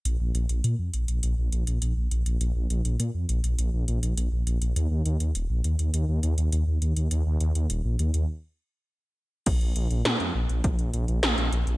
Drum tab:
CC |----------------|----------------|----------------|----------------|
HH |x-xxx-xxx-xxx-xx|x-xxx-xxx-xxx-xx|x-xxx-xxx-xxx-xx|x-xxx-xx--------|
SD |----------------|----------------|----------------|----------------|
BD |----------------|----------------|----------------|----------------|

CC |x---------------|
HH |xxxxxx-xxxxxxxxx|
SD |----o-------o---|
BD |o-------o-------|